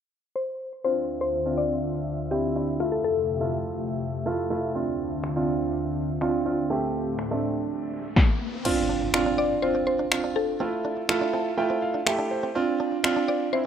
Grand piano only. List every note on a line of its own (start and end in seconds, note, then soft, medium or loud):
0.84 1.36 C4 medium
0.84 1.36 D4 medium
0.84 1.36 F4 medium
1.46 2.18 C4 medium
1.46 2.18 D4 medium
1.46 2.18 F4 medium
2.31 2.51 C4 medium
2.31 2.52 D4 medium
2.31 2.52 E4 medium
2.55 2.76 C4 medium
2.55 2.76 D4 medium
2.55 2.76 E4 medium
2.80 3.31 A3 medium
2.80 3.31 E4 medium
2.80 3.31 F4 medium
3.41 4.13 A3 medium
3.41 4.13 E4 medium
3.41 4.13 F4 medium
4.26 4.47 A3 medium
4.26 4.47 E4 medium
4.26 4.47 F4 loud
4.50 4.71 A3 medium
4.50 4.71 E4 medium
4.50 4.71 F4 medium
4.75 5.26 C4 medium
4.75 5.26 D4 medium
4.75 5.26 F4 medium
5.36 6.08 C4 medium
5.36 6.08 D4 medium
5.36 6.08 F4 medium
6.21 6.42 C4 medium
6.21 6.42 D4 medium
6.21 6.42 F4 loud
6.46 6.66 C4 medium
6.46 6.66 D4 medium
6.46 6.66 F4 medium
6.70 7.21 A3 medium
6.70 7.22 C4 medium
6.70 7.22 G4 medium
7.31 8.03 A3 medium
7.31 8.03 C4 medium
7.31 8.03 D4 medium
8.65 9.06 C4 medium
8.65 9.06 D4 medium
8.65 9.06 F4 loud
9.14 9.55 C4 medium
9.14 9.55 D4 medium
9.14 9.55 F4 loud
9.63 10.04 C4 medium
9.63 10.04 D4 medium
9.63 10.04 F4 medium
10.12 10.53 C4 medium
10.12 10.53 D4 medium
10.12 10.53 F4 medium
10.60 11.01 A3 medium
10.60 11.01 E4 medium
10.60 11.02 F4 medium
11.09 11.50 A3 loud
11.09 11.50 E4 medium
11.09 11.50 F4 loud
11.33 11.56 A5 medium
11.57 11.99 A3 medium
11.57 11.99 E4 medium
11.57 11.99 F4 loud
11.57 11.80 G5 medium
11.82 12.05 F5 medium
12.06 12.48 A3 medium
12.06 12.48 E4 medium
12.06 12.48 G4 loud
12.06 12.29 E5 medium
12.31 12.54 C5 medium
12.55 12.96 C4 loud
12.55 12.96 D4 medium
12.55 12.97 F4 loud
13.04 13.45 C4 loud
13.04 13.45 D4 medium
13.04 13.45 F4 loud
13.53 13.66 C4 medium
13.53 13.66 D4 medium
13.53 13.66 E4 medium